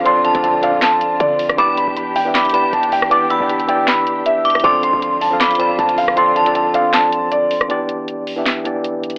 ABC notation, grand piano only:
X:1
M:4/4
L:1/8
Q:1/4=157
K:Ephr
V:1 name="Grand piano"
c' a a f a2 d2 | d' b b g b2 a g | d' b b g b2 e2 | d' c' c' a b2 a f |
c' a a f a2 d2 | z8 |]